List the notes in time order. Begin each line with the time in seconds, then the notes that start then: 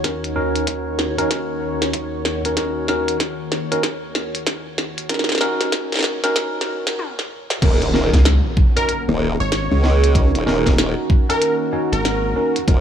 Already playing: D#2 D#3 F#4 C#5
0.04 C#4 D#4 F#4 A#4, kick, snare, closed hi-hat
0.24 closed hi-hat
0.36 C#4 D#4 F#4 A#4
0.56 closed hi-hat
0.67 kick, closed hi-hat
0.99 snare
1.18 C#4 D#4 F#4 A#4, closed hi-hat
1.31 kick, snare, closed hi-hat
1.82 snare, closed hi-hat
1.94 kick, closed hi-hat
2.25 snare
2.45 C#4 D#4 F#4 A#4, closed hi-hat
2.57 C#4 D#4 F#4 A#4, kick, snare, closed hi-hat
2.88 C#4 D#4 F#4 A#4, snare
3.08 closed hi-hat
3.20 kick, snare, closed hi-hat
3.52 snare
3.72 C#4 D#4 F#4 A#4, closed hi-hat
3.83 kick, snare, closed hi-hat
4.15 snare
4.35 closed hi-hat
4.47 kick, snare, closed hi-hat
4.78 snare
4.98 closed hi-hat
5.09 C#4 D#4 F#4 A#4, kick, snare, closed hi-hat
5.14 snare
5.19 snare
5.24 snare
5.29 snare, closed hi-hat
5.32 snare
5.35 snare
5.38 snare
5.41 C#4 D#4 F#4 A#4, snare
5.61 snare, closed hi-hat
5.72 kick, snare, closed hi-hat
5.92 snare, closed hi-hat
5.94 snare
5.97 snare
5.99 snare
6.01 snare
6.03 snare
6.24 C#4 D#4 F#4 A#4, snare, closed hi-hat
6.36 kick, snare, closed hi-hat
6.61 snare
6.87 snare, closed hi-hat
6.99 high tom
7.19 snare
7.50 snare
7.62 D#1 D#3 A#3 C#4 D#4 F#4 A#4, kick, closed hi-hat, crash, impact
7.82 closed hi-hat
7.94 C#4 D#4 F#4 A#4, snare
8.13 C#2, kick, snare, closed hi-hat
8.25 snare, closed hi-hat
8.57 kick
8.77 C#4 D#4 F#4 A#4, closed hi-hat
8.89 closed hi-hat
9.08 D#1
9.40 G#1 C#5
9.52 C#5, snare, closed hi-hat
9.71 C#2
9.84 snare
10.04 closed hi-hat
10.15 C#4 D#4 F#4 A#4, kick, closed hi-hat
10.34 D#1, closed hi-hat
10.46 D#1 C#4 D#4 F#4 A#4, snare
10.66 kick, snare, closed hi-hat
10.78 snare, closed hi-hat
11.10 kick
11.29 C#4 D#4 F#4 A#4, closed hi-hat
11.42 closed hi-hat
11.73 C#4 D#4 F#4 C#5
11.93 G#1 A#4, closed hi-hat
12.05 snare, closed hi-hat
12.36 C#4 D#4 F#4 A#4
12.56 closed hi-hat
12.67 D#1 C#4 D#4 F#4 A#4, kick, closed hi-hat